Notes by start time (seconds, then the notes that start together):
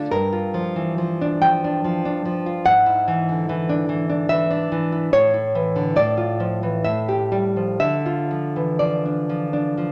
Already playing: A3 D4 F4
0.11 G2 A#4
0.33 F4
0.54 F3
0.76 E3
0.98 F3
1.21 D4
1.42 F3 G5
1.64 D4
1.84 F3
2.05 D4
2.25 F3
2.46 F4
2.66 G#2 F#5
2.86 E4
3.08 E3
3.29 D3
3.49 E3
3.69 D4
3.89 E3
4.10 D4
4.29 E3 E5
4.51 D4
4.72 E3
4.92 E4
5.13 A2 C#5
5.34 E4
5.55 E3
5.76 D3
5.96 A2 D5
6.17 F4
6.40 F3
6.63 E3
6.84 A2 E5
7.09 G4
7.32 G3
7.57 F3
7.80 D3 E5
8.06 F4
8.31 F3
8.56 E3
8.79 F3 D5
9.05 D4
9.29 F3
9.53 D4
9.78 F3